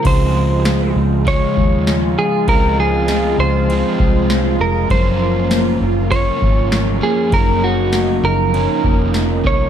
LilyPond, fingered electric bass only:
\new Staff \with { instrumentName = "Fingered electric bass" } { \clef bass \time 4/4 \key des \major \tempo 4 = 99 des,4. des,8. r16 ees,4 r8 | des,4. des,8. r16 c,4 f,,8 | ges,,4. ges,,8. r16 aes,,4 r8 | ges,,4. ges,,8. r16 f,,4 c,8 | }